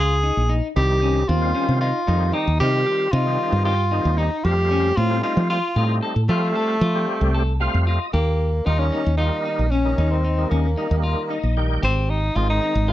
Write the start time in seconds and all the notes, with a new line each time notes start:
Already playing: C#2 F4 G#4
0.23 D#4
0.37 A#1
0.49 D#4
0.76 C2 D#3 G3 C4 D#4 G4
1.02 C#4
1.28 D#2 C4 F4
1.41 D#3 G3 C4 F4
1.55 C#4
1.69 C3
1.81 D#4 F4
2.07 F2 D#3 G3 C4 D#4
2.33 D#4 G4
2.47 D#2
2.60 C3 D#3 G3 C4 D#4 F4 G4
2.86 G4
3.12 C3 D#4 F4
3.26 D#3 G3 C4 D#4
3.52 G2
3.65 F4 G4
3.91 D#3 G3 C4 D#4
4.05 D#2
4.18 D#4
4.45 F2 G3 A3 C4 F4 G4
4.71 C#4
4.97 A2 C4 F4
5.10 G3 A3 C4 F4
5.23 D#4 F4
5.37 F3
5.50 F4
5.76 A2 G3 A3 C4 D#4 F4
6.03 A4
6.16 A2
6.29 F3 G3 A3 C4 F4
6.56 A4
6.81 F3 F4
6.95 G3 A3 C4 G4
7.21 C2
7.34 A4
7.60 G3 A3 C4 F4 F5
7.74 F2
7.87 F4 D#5
8.13 D#2 A#3 G4
8.66 D#2 D#3 G3 A#3 D#4 F4
8.79 C#4
8.92 D#4
9.06 D#2
9.18 D#3 G3 A#3 D#4 F4
9.46 D#4
9.59 A#1
9.70 C#4
9.85 D#3 G3 A#3 D#4
9.98 D#2 D#4
10.11 C4
10.24 D#4
10.38 D#3 G3 A#3 D#4
10.50 D#2 A#3 C#4
10.77 D#3 G3 A#3 D#4
10.90 D#2 D#3 G3 A#3 D#4
11.03 F4
11.30 D#4 D#5
11.43 A#1
11.57 D#3 G3 A#3 D#4 G5
11.83 G#1 C4 G4
12.10 D#4
12.35 G#1 D#3 G#3 C4 D#4 F4
12.50 D#4
12.62 D#4
12.75 G#1
12.88 D#3 G#3 C4 F4